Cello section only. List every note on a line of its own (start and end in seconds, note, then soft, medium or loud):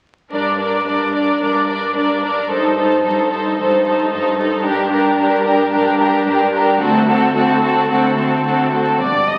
0.32 0.80 G2 soft
0.86 1.35 G2 soft
1.41 1.89 G2 soft
1.96 2.44 G2 soft
2.50 2.98 G2 soft
3.04 3.52 G2 soft
3.58 4.05 G2 soft
4.11 4.59 G2 soft
4.65 5.13 G2 soft
5.19 5.66 G2 soft
5.72 6.20 G2 medium
6.26 6.74 G2 soft
6.80 7.29 D2 medium
7.35 7.83 D2 medium
7.89 8.38 D2 soft
8.44 8.94 D2 soft
9.01 9.38 G2 soft